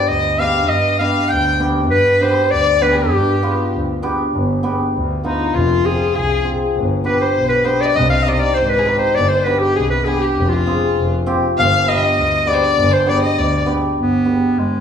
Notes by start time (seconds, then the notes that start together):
Already playing: D5
0.08 D2 D#5
0.39 B3 D4 G4 F5
0.69 G2 D#5
0.99 B3 D4 G4 F5
1.29 D2 G5
1.60 B3 D4 G4
1.91 G2 B4
2.21 B3 D4 G4 C5
2.51 D2 D5
2.81 B3 D4 G4 B4
2.92 G#4
2.98 G4
3.12 G2
3.43 B3 D4 F4
3.73 D2
4.03 B3 D4 G4
4.34 G1
4.63 B3 D4 G4
4.94 D2
5.24 B3 D4 D#4 F4
5.54 F1 F4
5.84 C4 F4 G#4
6.15 C2 G#4
6.44 C4 F4 G#4
6.75 G1
7.04 B3 D4 G4 B4
7.21 C5
7.36 B1
7.49 B4
7.64 B3 D4 G4 C5
7.81 D5
7.85 D5 D#5
7.89 D5
7.95 C2 D#5
8.10 F5
8.23 C4 D#4 G4 D#5
8.28 D5 D#5
8.34 D#5
8.38 D5
8.43 D5
8.54 G#1 C5
8.69 B4
8.79 G#4
8.85 C4 D#4 G4 B4
8.99 C5
9.15 G1 D5
9.29 C5
9.43 B3 D4 G4 B4
9.59 G4
9.75 C2 G#4
9.90 B4
10.05 B3 D4 G4 G#4
10.19 G4
10.37 F1
10.49 F4
10.66 C4 F4 G#4
10.97 F1
11.26 C4 F4 G4
11.58 G1 F5
11.86 B3 D4 G4 D#5
12.17 D2
12.47 B3 D4 G4 D5
12.55 C5
12.64 D5
12.77 G1
12.92 C5
13.06 B3 D4 G4 D5
13.22 D#5
13.37 D2 D5
13.66 B3 D4 G4
13.97 G1 B3
14.25 B3 D4 G4
14.56 G1 G#3